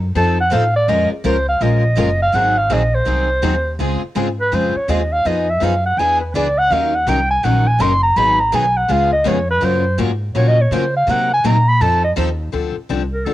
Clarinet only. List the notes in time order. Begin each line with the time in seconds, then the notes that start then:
0.17 A5
0.40 F#5
0.53 F5
0.76 D5
0.89 D#5
1.12 G#4
1.25 C5
1.49 F5
1.63 D#5
2.22 F5
2.35 F#5
2.58 F5
2.73 D#5
2.95 C5
4.41 B4
4.55 C5
4.77 C#5
4.90 D#5
5.13 F5
5.27 D#5
5.50 E5
5.64 F5
5.86 F#5
5.99 G#5
6.21 B4
6.35 D5
6.59 F#5
6.72 F5
6.95 F#5
7.09 G5
7.31 G#5
7.44 F#5
7.68 G#5
7.82 C6
8.03 A#5
8.17 B5
8.40 A#5
8.55 G#5
8.77 F#5
8.91 F5
9.13 D#5
9.28 C#5
9.51 B4
9.65 C5
10.36 C#5
10.48 D#5
10.61 C#5
10.73 C5
10.96 F5
11.11 F#5
11.34 G#5
11.47 A#5
11.69 B5
11.81 A5
12.05 D#5
13.14 A#4
13.26 A4